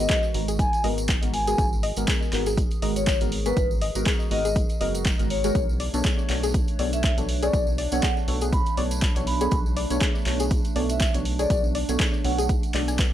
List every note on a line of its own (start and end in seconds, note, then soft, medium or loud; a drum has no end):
0.00 0.32 G#3 medium
0.00 0.32 B3 medium
0.00 0.32 F#4 medium
0.00 1.54 F#4 medium
0.00 0.32 A#4 loud
0.00 0.18 D#5 medium
0.09 0.23 G#4 medium
0.09 kick loud
0.09 clap loud
0.09 closed hi-hat medium
0.09 tambourine medium
0.23 tambourine soft
0.34 0.68 G#1 loud
0.34 0.51 G#3 medium
0.34 0.51 B3 medium
0.34 0.51 F#4 medium
0.34 0.51 A#4 medium
0.34 open hi-hat loud
0.48 0.56 G#4 loud
0.48 closed hi-hat medium
0.48 tambourine medium
0.59 0.80 G#5 medium
0.59 kick loud
0.59 closed hi-hat medium
0.59 tambourine medium
0.73 closed hi-hat soft
0.73 tambourine soft
0.84 1.18 G#1 medium
0.84 1.19 G#3 medium
0.84 1.19 B3 medium
0.84 1.19 F#4 medium
0.84 1.19 A#4 medium
0.84 0.93 D#5 loud
0.84 open hi-hat loud
0.98 closed hi-hat medium
0.98 tambourine medium
1.08 kick loud
1.08 clap loud
1.08 closed hi-hat medium
1.08 tambourine medium
1.22 1.55 G#1 medium
1.22 1.31 G#3 medium
1.22 1.31 B3 medium
1.22 1.31 F#4 medium
1.22 1.31 A#4 medium
1.22 closed hi-hat medium
1.22 tambourine soft
1.34 1.42 G#5 medium
1.34 open hi-hat loud
1.47 1.56 G#3 medium
1.47 1.56 B3 medium
1.47 1.56 F#4 medium
1.47 1.55 G#4 loud
1.47 1.56 A#4 loud
1.47 1.54 G#5 medium
1.47 closed hi-hat medium
1.47 tambourine medium
1.58 1.92 G#1 loud
1.58 5.51 G#4 medium
1.58 1.68 G#4 medium
1.58 kick loud
1.58 closed hi-hat medium
1.58 tambourine medium
1.73 tambourine soft
1.83 1.93 D#5 loud
1.83 open hi-hat loud
1.96 2.06 G#1 medium
1.96 2.30 G#3 medium
1.96 2.30 B3 medium
1.96 2.30 F#4 medium
1.96 2.30 A#4 loud
1.96 closed hi-hat medium
1.96 tambourine medium
2.07 2.21 G#4 medium
2.07 kick loud
2.07 clap loud
2.07 closed hi-hat medium
2.07 tambourine medium
2.22 tambourine soft
2.33 2.67 G#1 loud
2.33 2.49 G#3 medium
2.33 2.49 B3 medium
2.33 2.49 F#4 medium
2.33 2.49 A#4 medium
2.33 clap medium
2.33 open hi-hat medium
2.46 2.54 G#4 loud
2.46 closed hi-hat soft
2.46 tambourine medium
2.58 kick loud
2.58 closed hi-hat medium
2.58 tambourine medium
2.71 closed hi-hat soft
2.71 tambourine soft
2.82 3.16 G#1 medium
2.82 3.18 G#3 medium
2.82 3.18 B3 medium
2.82 3.18 F#4 medium
2.82 3.18 A#4 medium
2.82 2.92 D#5 loud
2.82 open hi-hat loud
2.96 3.16 C#5 medium
2.96 closed hi-hat medium
2.96 tambourine medium
3.07 kick loud
3.07 clap loud
3.07 closed hi-hat medium
3.07 tambourine medium
3.21 3.53 G#1 medium
3.21 3.29 G#3 medium
3.21 3.29 B3 medium
3.21 3.30 F#4 medium
3.21 3.30 A#4 medium
3.21 closed hi-hat medium
3.21 tambourine soft
3.32 open hi-hat loud
3.46 3.54 G#3 medium
3.46 3.54 B3 medium
3.46 3.54 F#4 medium
3.46 3.53 G#4 loud
3.46 3.54 A#4 loud
3.46 3.66 B4 medium
3.46 closed hi-hat medium
3.46 tambourine medium
3.57 3.91 G#1 loud
3.57 3.66 G#4 medium
3.57 kick loud
3.57 closed hi-hat medium
3.57 tambourine medium
3.71 tambourine soft
3.81 3.91 D#5 loud
3.81 open hi-hat loud
3.95 4.04 G#1 medium
3.95 4.28 G#3 loud
3.95 4.28 B3 medium
3.95 4.29 F#4 medium
3.95 4.29 A#4 loud
3.95 closed hi-hat soft
3.95 tambourine medium
4.06 4.20 G#4 medium
4.06 kick loud
4.06 clap loud
4.06 closed hi-hat medium
4.06 tambourine medium
4.20 tambourine soft
4.31 4.65 G#1 loud
4.31 4.48 G#3 medium
4.31 4.48 B3 medium
4.31 4.48 F#4 medium
4.31 4.48 A#4 medium
4.31 4.52 D#5 medium
4.31 open hi-hat medium
4.45 4.52 G#4 loud
4.45 closed hi-hat soft
4.45 tambourine medium
4.56 kick loud
4.56 closed hi-hat medium
4.56 tambourine medium
4.69 closed hi-hat soft
4.69 tambourine soft
4.80 5.15 F#1 medium
4.80 5.16 G#3 medium
4.80 5.16 B3 medium
4.80 5.16 F#4 medium
4.80 5.16 A#4 medium
4.80 4.90 D#5 loud
4.80 open hi-hat loud
4.95 closed hi-hat medium
4.95 tambourine medium
5.05 kick loud
5.05 clap loud
5.05 closed hi-hat medium
5.05 tambourine medium
5.19 5.51 G#1 loud
5.19 5.28 G#3 medium
5.19 5.28 B3 medium
5.19 5.28 F#4 medium
5.19 5.28 A#4 medium
5.19 closed hi-hat medium
5.19 tambourine soft
5.30 5.61 C#5 medium
5.30 open hi-hat medium
5.44 5.53 G#3 medium
5.44 5.53 B3 medium
5.44 5.53 F#4 medium
5.44 5.52 G#4 loud
5.44 5.53 A#4 loud
5.44 closed hi-hat medium
5.44 tambourine medium
5.55 5.89 B1 loud
5.55 13.13 A3 medium
5.55 13.13 D4 medium
5.55 5.65 G#4 medium
5.55 9.48 C#5 medium
5.55 kick loud
5.55 closed hi-hat medium
5.55 tambourine medium
5.69 tambourine soft
5.80 5.89 D5 loud
5.80 open hi-hat loud
5.94 6.02 B1 medium
5.94 6.27 B3 medium
5.94 6.27 D4 medium
5.94 6.27 A4 medium
5.94 6.27 C#5 loud
5.94 closed hi-hat medium
5.94 tambourine medium
6.04 6.18 G#4 medium
6.04 kick loud
6.04 clap loud
6.04 closed hi-hat medium
6.04 tambourine medium
6.19 tambourine soft
6.29 6.63 B1 loud
6.29 6.46 B3 medium
6.29 6.46 D4 medium
6.29 6.46 A4 medium
6.29 6.46 C#5 medium
6.29 clap medium
6.29 open hi-hat medium
6.43 6.51 G#4 loud
6.43 closed hi-hat soft
6.43 tambourine medium
6.54 kick loud
6.54 closed hi-hat medium
6.54 tambourine medium
6.68 closed hi-hat soft
6.68 tambourine soft
6.79 7.13 B1 medium
6.79 7.14 B3 medium
6.79 7.14 D4 medium
6.79 7.14 A4 medium
6.79 7.15 C#5 medium
6.79 6.89 D5 loud
6.79 open hi-hat loud
6.93 7.13 E5 medium
6.93 closed hi-hat medium
6.93 tambourine medium
7.04 kick loud
7.04 clap loud
7.04 closed hi-hat medium
7.04 tambourine medium
7.18 7.50 B1 medium
7.18 7.26 B3 medium
7.18 7.26 D4 medium
7.18 7.26 A4 medium
7.18 7.26 C#5 medium
7.18 closed hi-hat medium
7.18 tambourine soft
7.29 open hi-hat medium
7.42 7.51 B3 medium
7.42 7.51 D4 medium
7.42 7.50 G#4 loud
7.42 7.51 A4 medium
7.42 7.51 C#5 loud
7.42 7.62 D5 medium
7.42 closed hi-hat medium
7.42 tambourine medium
7.53 7.87 B1 loud
7.53 7.63 G#4 medium
7.53 kick loud
7.53 closed hi-hat medium
7.53 tambourine medium
7.67 tambourine soft
7.78 7.88 D5 loud
7.78 open hi-hat loud
7.92 8.01 B1 medium
7.92 8.25 B3 medium
7.92 8.25 D4 medium
7.92 8.25 A4 medium
7.92 8.25 C#5 loud
7.92 8.12 F#5 medium
7.92 closed hi-hat medium
7.92 tambourine medium
8.03 8.16 G#4 medium
8.03 kick loud
8.03 clap loud
8.03 closed hi-hat medium
8.03 tambourine medium
8.17 tambourine soft
8.28 8.62 B1 loud
8.28 8.44 B3 medium
8.28 8.44 D4 medium
8.28 8.44 A4 medium
8.28 8.44 C#5 medium
8.28 open hi-hat medium
8.41 8.49 G#4 loud
8.41 closed hi-hat medium
8.41 tambourine medium
8.53 8.73 B5 medium
8.53 kick loud
8.53 closed hi-hat medium
8.53 tambourine medium
8.66 closed hi-hat soft
8.66 tambourine soft
8.77 9.11 B1 medium
8.77 9.13 B3 medium
8.77 9.13 D4 medium
8.77 9.13 A4 medium
8.77 9.13 C#5 medium
8.77 8.87 D5 loud
8.77 open hi-hat loud
8.91 closed hi-hat medium
8.91 tambourine medium
9.01 kick loud
9.01 clap loud
9.01 closed hi-hat medium
9.01 tambourine medium
9.16 9.48 B1 medium
9.16 9.24 B3 medium
9.16 9.24 D4 medium
9.16 9.25 A4 medium
9.16 9.25 C#5 medium
9.16 closed hi-hat medium
9.16 tambourine soft
9.27 9.36 B5 medium
9.27 open hi-hat medium
9.41 9.49 B3 medium
9.41 9.49 D4 medium
9.41 9.48 G#4 loud
9.41 9.49 A4 medium
9.41 9.49 C#5 loud
9.41 9.48 B5 medium
9.41 closed hi-hat medium
9.41 tambourine medium
9.51 9.86 B1 loud
9.51 9.61 G#4 medium
9.51 kick loud
9.51 closed hi-hat medium
9.51 tambourine medium
9.66 tambourine soft
9.77 9.86 D5 loud
9.77 open hi-hat loud
9.90 9.99 B1 medium
9.90 10.23 B3 loud
9.90 10.24 D4 medium
9.90 10.24 A4 medium
9.90 10.24 C#5 loud
9.90 closed hi-hat medium
9.90 tambourine medium
10.01 10.15 G#4 medium
10.01 kick loud
10.01 clap loud
10.01 closed hi-hat medium
10.01 tambourine medium
10.15 tambourine soft
10.26 10.60 B1 loud
10.26 10.43 B3 medium
10.26 10.43 D4 medium
10.26 10.43 A4 medium
10.26 10.43 C#5 medium
10.26 clap medium
10.26 open hi-hat medium
10.40 10.47 G#4 loud
10.40 closed hi-hat medium
10.40 tambourine medium
10.51 kick loud
10.51 closed hi-hat medium
10.51 tambourine medium
10.65 closed hi-hat soft
10.65 tambourine soft
10.76 11.10 B1 medium
10.76 11.11 B3 medium
10.76 11.11 D4 medium
10.76 11.11 A4 medium
10.76 11.11 C#5 loud
10.76 10.85 D5 loud
10.76 open hi-hat loud
10.89 11.09 E5 medium
10.89 closed hi-hat medium
10.89 tambourine medium
11.00 kick loud
11.00 clap loud
11.00 closed hi-hat medium
11.00 tambourine medium
11.14 11.46 B1 medium
11.14 11.23 B3 medium
11.14 11.23 D4 medium
11.14 11.23 A4 medium
11.14 11.23 C#5 medium
11.14 closed hi-hat medium
11.14 tambourine soft
11.25 open hi-hat medium
11.39 11.48 B3 medium
11.39 11.48 D4 medium
11.39 11.47 G#4 loud
11.39 11.48 A4 medium
11.39 11.48 C#5 loud
11.39 11.59 D5 medium
11.39 closed hi-hat medium
11.39 tambourine medium
11.50 11.84 B1 loud
11.50 11.60 G#4 medium
11.50 kick loud
11.50 closed hi-hat medium
11.50 tambourine medium
11.64 tambourine soft
11.75 11.84 D5 loud
11.75 open hi-hat loud
11.89 11.97 B1 medium
11.89 12.22 B3 medium
11.89 12.22 D4 medium
11.89 12.22 A4 medium
11.89 12.22 C#5 loud
11.89 closed hi-hat medium
11.89 tambourine medium
12.00 12.13 G#4 medium
12.00 kick loud
12.00 clap loud
12.00 closed hi-hat medium
12.00 tambourine medium
12.14 tambourine soft
12.24 12.59 B1 loud
12.24 12.41 B3 medium
12.24 12.41 D4 medium
12.24 12.41 A4 medium
12.24 12.41 C#5 medium
12.24 12.45 F#5 medium
12.24 open hi-hat medium
12.38 12.46 G#4 loud
12.38 closed hi-hat medium
12.38 tambourine medium
12.49 kick loud
12.49 closed hi-hat medium
12.49 tambourine medium
12.63 closed hi-hat soft
12.63 tambourine soft
12.74 13.13 B1 loud
12.74 12.87 G#3 medium
12.74 13.13 B3 medium
12.74 13.13 D4 medium
12.74 13.13 A4 medium
12.74 13.13 D5 loud
12.74 clap medium
12.74 open hi-hat loud
12.88 12.92 G#5 medium
12.88 closed hi-hat medium
12.88 tambourine medium
12.98 13.08 B4 medium
12.98 kick loud
12.98 clap loud
12.98 closed hi-hat medium
12.98 tambourine medium